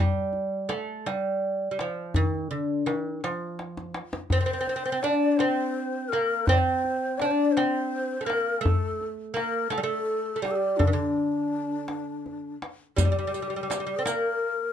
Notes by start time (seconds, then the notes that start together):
0.00 G3
0.33 tombak ka
0.69 A3, tombak tek
1.06 G3, tombak tek
1.71 G3
1.79 F3, tombak tek
2.14 D#3, tombak dum
2.51 D3, tombak ka
2.86 D#3, tombak tek
3.24 F3, tombak tek
3.59 tombak tek
3.77 tombak ka
3.94 tombak tek
4.13 tombak ka
4.30 C4 C5, tombak dum
4.41 C4
4.46 C4
4.53 C4
4.61 C4
4.67 C4, tombak ka
4.76 C4
4.86 C4
4.92 C4
5.02 D4 D5, tombak tek
5.32 D5
5.37 C4 C5, tombak tek
6.09 A#4, tombak tek
6.13 A#3
6.46 C4 C5, tombak dum
6.52 D5
6.58 C5
6.84 tombak ka
7.18 D4 D5, tombak tek
7.25 C5
7.31 D5
7.52 C5
7.57 C4, tombak tek
8.21 A3
8.25 A#3 A#4
8.30 tombak tek
8.61 A3 A4
8.65 tombak dum
9.01 tombak ka
9.34 A#3 A#4, tombak tek
9.70 A3 A4, tombak tek
9.78 G3
9.83 A3 A4
10.36 A3
10.42 G3 G4, tombak tek
10.51 A4
10.55 G4
10.77 D3 D4, tombak dum
10.87 D#3
10.92 D3 D4
11.16 tombak ka
11.88 tombak tek
12.26 tombak ka
12.62 tombak tek
12.96 G3 G4, riq, tombak dum
13.05 G3
13.12 G3
13.19 G3
13.27 G3
13.34 G3, riq
13.42 G3
13.50 G3
13.56 G3
13.63 G3
13.70 G3, riq, tombak tek
13.80 G3
13.87 G3
13.99 C4
14.04 A#3 A#4, riq, tombak tek